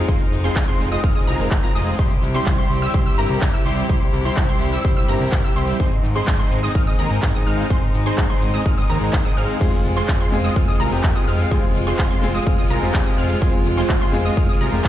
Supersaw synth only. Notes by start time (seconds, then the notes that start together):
0.08 G#3 C4 F4 G#4 C5
0.44 G#3 C4 F4 G#4 C5
0.68 G#3 C4 F4 G#4 C5
0.92 G#3 C4 F4 G#4 D#5
1.04 G#3 C4 F4 G#4 F5
1.16 G#3 C4 F4 G#4 D#5
1.27 G#3 C4 F4 G#4 A#4
1.63 G#3 C4 F4 G#4 A#4
1.75 G#3 C4 F4 G#4 D#5
1.99 G3 C4 E4 G4 C5
2.35 G3 C4 E4 G4 C5
2.58 G3 C4 E4 G4 C5
2.82 G3 C4 E4 G4 E5
2.94 G3 C4 E4 G4 C5
3.06 G3 C4 E4 G4 E5
3.18 G3 C4 E4 G4 A#4
3.54 G3 C4 E4 G4 E5
3.66 G3 C4 E4 G4 C5
3.89 G3 C4 E4 G4 C5
4.25 G3 C4 E4 G4 C5
4.49 G3 C4 E4 G4 C5
4.73 G3 C4 E4 G4 E5
4.85 G3 C4 E4 G4 C5
4.96 G3 C4 E4 G4 E5
5.08 G3 C4 E4 G4 A#4
5.44 G3 C4 E4 G4 E5
5.56 G3 C4 E4 G4 C5
5.80 G#3 C4 D#4 G#4 C5
6.15 G#3 C4 D#4 G#4 C5
6.39 G#3 C4 D#4 G#4 C5
6.63 G#3 C4 D#4 G#4 D#5
6.75 G#3 C4 D#4 G#4 F5
6.87 G#3 C4 D#4 G#4 D#5
6.99 G#3 C4 D#4 G#4 A#4
7.35 G#3 C4 D#4 G#4 D#5
7.47 G#3 C4 D#4 G#4 F5
7.70 G#3 C4 D#4 G#4 C5
8.06 G#3 C4 D#4 G#4 C5
8.30 G#3 C4 D#4 G#4 C5
8.54 G#3 C4 D#4 G#4 D#5
8.66 G#3 C4 D#4 G#4 F5
8.78 G#3 C4 D#4 G#4 D#5
8.89 G#3 C4 D#4 G#4 A#4
9.25 G#3 C4 D#4 G#4 D#5
9.37 G#3 C4 D#4 G#4 F5
9.61 G#3 C4 F4 G#4 C5
9.96 G#3 C4 F4 G#4 C5
10.20 G#3 C4 F4 G#4 C5
10.44 G#3 C4 F4 G#4 D#5
10.56 G#3 C4 F4 G#4 F5
10.68 G#3 C4 F4 G#4 D#5
10.80 G#3 C4 F4 G#4 A#4
11.16 G#3 C4 F4 G#4 D#5
11.27 G#3 C4 F4 G#4 F5
11.51 G#3 C4 F4 G#4 C5
11.87 G#3 C4 F4 G#4 C5
12.11 G#3 C4 F4 G#4 C5
12.35 G#3 C4 F4 G#4 D#5
12.47 G#3 C4 F4 G#4 F5
12.59 G#3 C4 F4 G#4 D#5
12.70 G#3 C4 F4 G#4 A#4
13.06 G#3 C4 F4 G#4 D#5
13.18 G#3 C4 F4 G#4 F5
13.42 G#3 C4 F4 G#4 C5
13.78 G#3 C4 F4 G#4 C5
14.01 G#3 C4 F4 G#4 C5
14.25 G#3 C4 F4 G#4 D#5
14.37 G#3 C4 F4 G#4 F5
14.49 G#3 C4 F4 G#4 D#5
14.61 G#3 C4 F4 G#4 A#4